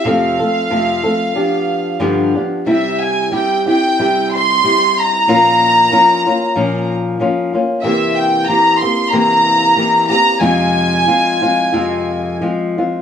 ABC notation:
X:1
M:4/4
L:1/8
Q:1/4=92
K:Gdor
V:1 name="Violin section"
f6- f z | [K:Cphr] =e a g g2 c'2 b- | b4- b z3 | =e g b c' b3 b |
a6 z2 |]
V:2 name="Nylon-string guitar"
[F,,C,F,A,CA] [F,A,CA] [F,,C,F,A,CA] [F,A,CA] [F,=B,DG]2 [G,,D,F,B,DG] [F,B,DG] | [K:Cphr] [C,G,C=E]2 [G,CEG] [CEG] [C,G,CEG]2 [G,CEG]2 | [B,,F,B,DF]2 [F,B,DF] [B,DF] [B,,F,B,DF]2 [F,B,DF] [B,DF] | [C,=E,B,CG]2 [E,B,CG] [B,CG] [C,E,B,CG]2 [E,B,CG] [B,CG] |
[F,,C,F,A,CF]2 [F,A,CF] [F,A,CF] [F,,C,F,A,CF]2 [F,A,CF] [F,A,CF] |]